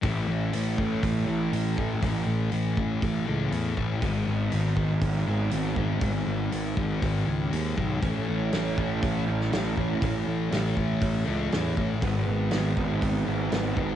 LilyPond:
<<
  \new Staff \with { instrumentName = "Clean electric guitar" } { \time 4/4 \key a \lydian \tempo 4 = 120 r1 | r1 | r1 | r1 |
cis'8 cis'8 cis'8 e'8 cis'8 cis'8 cis'8 cis'8 | cis'8 cis'8 cis'8 e'8 cis'8 cis'8 cis'8 cis'8 | b8 b8 b8 dis'8 b8 b8 b8 b8 | }
  \new Staff \with { instrumentName = "Overdriven electric guitar" } { \clef bass \time 4/4 \key a \lydian <a, e a cis' e'>1~ | <a, e a cis' e'>1 | <gis, dis gis b dis'>1~ | <gis, dis gis b dis'>1 |
<a, e a cis' e'>1~ | <a, e a cis' e'>1 | <gis, dis gis b dis'>1 | }
  \new Staff \with { instrumentName = "Distorted electric guitar" } { \clef bass \time 4/4 \key a \lydian <a, e a>4 <a, e a>4. <e a>8 <a, e a>8 <e a>8 | <a, e a>4 <a, e a>4. <e a>8 <a, e a>8 <e a>8 | <gis, dis gis>4 <gis, dis gis>4. <dis gis>8 <gis, dis gis>8 <dis gis>8 | <gis, dis gis>4 <gis, dis gis>4. <dis gis>8 <gis, dis gis>8 <dis gis>8 |
<a, e a>4 <a, e a>4. <e a>8 <a, e a>8 <e a>8 | <a, e a>4 <a, e a>4. <e a>8 <a, e a>8 <e a>8 | <gis, dis gis>4 <gis, dis gis>4. <dis gis>8 <gis, dis gis>8 <dis gis>8 | }
  \new Staff \with { instrumentName = "Picked electric bass" } { \clef bass \time 4/4 \key a \lydian a,,8 a,,8 a,,8 a,,8 a,,8 a,,8 a,,8 a,,8 | a,,8 a,,8 a,,8 a,,8 a,,8 cis,8 e,8 a,,8 | gis,,8 gis,,8 gis,,8 gis,,8 gis,,8 gis,,8 gis,,8 gis,,8 | gis,,8 gis,,8 gis,,8 gis,,8 gis,,8 cis,8 dis,8 b,,8 |
a,,8 a,,8 a,,8 a,,8 a,,8 a,,8 a,,8 a,,8 | a,,8 a,,8 a,,8 a,,8 a,,8 cis,8 e,8 a,,8 | gis,,8 gis,,8 gis,,8 gis,,8 gis,,8 gis,,8 gis,,8 gis,,8 | }
  \new DrumStaff \with { instrumentName = "Drums" } \drummode { \time 4/4 <hho bd>4 hho8 bd8 <hho bd>4 hho8 bd8 | <hho bd>4 hho8 bd8 <hho bd>4 hho8 bd8 | <hho bd>4 hho8 bd8 <hho bd>4 hho8 bd8 | <hho bd>4 hho8 bd8 <hho bd>4 hho8 bd8 |
<hho bd>4 <hho sn>8 bd8 <hho bd>8. sn16 <hho sn>8 bd8 | <hho bd>4 <hho sn>8 bd8 <hho bd>4 <hho sn>8 bd8 | <hho bd>4 <hho sn>8 bd8 <hho bd>4 <hho sn>8 bd8 | }
>>